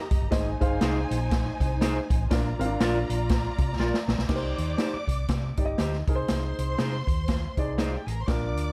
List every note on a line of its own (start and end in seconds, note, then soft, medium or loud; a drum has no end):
0.00 0.28 G4 medium
0.00 0.28 D#5 medium
0.00 0.28 A#5 medium
0.11 0.19 F#1 medium
0.11 kick loud
0.11 closed hi-hat medium
0.22 0.30 G1 medium
0.31 0.54 G#1 loud
0.31 0.48 D#4 medium
0.31 2.27 D#4 medium
0.31 0.48 G#4 medium
0.31 0.48 C5 medium
0.31 2.27 C5 medium
0.31 0.48 D#5 medium
0.31 2.27 G#5 medium
0.31 kick loud
0.31 snare loud
0.31 closed hi-hat loud
0.60 0.77 G1 medium
0.60 1.16 D#4 medium
0.60 1.16 G#4 medium
0.60 1.16 C5 medium
0.60 1.16 F5 medium
0.60 kick medium
0.60 closed hi-hat medium
0.81 1.04 C2 medium
0.81 0.99 D#4 medium
0.81 0.99 G#4 medium
0.81 1.00 C5 medium
0.81 snare loud
0.81 closed hi-hat loud
1.11 1.49 A#1 medium
1.11 closed hi-hat medium
1.31 kick loud
1.31 snare loud
1.31 closed hi-hat medium
1.60 1.98 C2 medium
1.60 kick medium
1.60 closed hi-hat medium
1.81 1.98 D#4 medium
1.81 1.99 G#4 medium
1.81 1.99 C5 loud
1.81 snare loud
1.81 closed hi-hat loud
2.10 2.26 A1 medium
2.10 kick loud
2.10 closed hi-hat medium
2.30 2.53 A#1 loud
2.30 2.47 D4 medium
2.30 2.47 F4 medium
2.30 4.25 F4 medium
2.30 2.47 A#4 medium
2.30 2.47 D5 medium
2.30 4.25 D5 medium
2.30 4.25 A#5 medium
2.30 kick loud
2.30 snare loud
2.30 closed hi-hat loud
2.59 2.75 G#1 medium
2.59 2.64 C4 medium
2.59 3.15 F4 medium
2.59 3.15 A#4 medium
2.59 3.15 F5 medium
2.59 closed hi-hat medium
2.65 3.18 D4 medium
2.80 3.03 A#1 loud
2.80 2.98 F4 medium
2.80 2.98 A#4 loud
2.80 2.98 D5 loud
2.80 snare loud
2.80 closed hi-hat loud
3.09 3.47 A#1 medium
3.09 closed hi-hat medium
3.29 kick loud
3.29 snare loud
3.29 closed hi-hat medium
3.58 3.75 C2 medium
3.58 kick medium
3.58 closed hi-hat medium
3.79 3.91 A#1 medium
3.79 3.97 F4 medium
3.79 3.97 A#4 medium
3.79 3.97 D5 medium
3.79 snare medium
3.94 snare medium
4.08 4.16 A#1 medium
4.08 snare loud
4.18 4.27 B1 medium
4.18 snare medium
4.28 4.51 C2 medium
4.28 4.87 D#4 medium
4.28 4.87 G4 medium
4.28 4.36 A#4 medium
4.28 5.75 D5 medium
4.28 5.75 D6 medium
4.28 kick loud
4.28 snare loud
4.28 crash medium
4.36 4.90 C5 medium
4.58 4.74 D#2 medium
4.58 closed hi-hat medium
4.78 4.96 D#4 medium
4.78 4.97 G4 medium
4.78 4.97 C5 medium
4.78 snare loud
4.78 closed hi-hat medium
4.94 muted fingered electric bass stroke soft
5.07 5.24 C2 medium
5.07 kick medium
5.07 closed hi-hat medium
5.28 5.51 C3 medium
5.28 kick medium
5.28 snare loud
5.28 closed hi-hat medium
5.57 5.74 G1 medium
5.57 5.99 D#4 medium
5.57 5.99 G4 medium
5.57 5.63 D5 medium
5.57 kick medium
5.57 closed hi-hat medium
5.65 6.03 D#5 medium
5.78 6.01 D2 medium
5.78 5.95 D#4 medium
5.78 5.96 G4 medium
5.78 5.96 C5 medium
5.78 snare loud
5.78 closed hi-hat loud
5.93 snare soft
6.07 6.23 C2 medium
6.07 6.85 D#4 medium
6.07 6.84 G#4 medium
6.07 6.13 A#4 medium
6.07 7.71 C5 medium
6.07 7.71 C6 medium
6.07 kick loud
6.07 closed hi-hat medium
6.15 6.88 C5 medium
6.28 6.52 C2 medium
6.28 snare loud
6.28 closed hi-hat loud
6.59 6.74 C2 medium
6.59 closed hi-hat medium
6.78 7.01 C3 medium
6.78 6.95 D#4 medium
6.78 6.96 G#4 medium
6.78 6.96 C5 medium
6.78 snare loud
6.78 closed hi-hat medium
7.07 7.45 D#2 medium
7.07 kick medium
7.07 closed hi-hat medium
7.28 kick medium
7.28 snare loud
7.28 closed hi-hat medium
7.57 7.95 C2 medium
7.57 7.98 D#4 medium
7.57 7.99 G#4 medium
7.57 7.99 D5 medium
7.57 kick medium
7.57 closed hi-hat medium
7.78 7.95 D#4 medium
7.78 7.88 D#4 medium
7.78 7.95 G#4 medium
7.78 7.95 C5 loud
7.78 7.88 D#5 medium
7.78 snare loud
7.78 closed hi-hat loud
7.87 7.94 F4 medium
7.87 7.94 F5 medium
7.95 8.07 G4 medium
7.95 8.07 G5 medium
8.05 8.23 A1 medium
8.05 8.10 G#4 medium
8.05 8.10 G#5 medium
8.05 closed hi-hat medium
8.10 8.20 A#4 medium
8.10 8.20 A#5 medium
8.21 8.28 C5 medium
8.21 8.28 C6 medium
8.26 8.56 A#1 medium
8.26 8.72 D4 medium
8.26 8.72 F4 medium
8.26 8.72 A#4 medium
8.26 8.72 D5 medium
8.26 8.72 D6 loud
8.26 kick loud
8.26 snare medium
8.26 closed hi-hat loud
8.56 8.72 D2 medium
8.56 closed hi-hat medium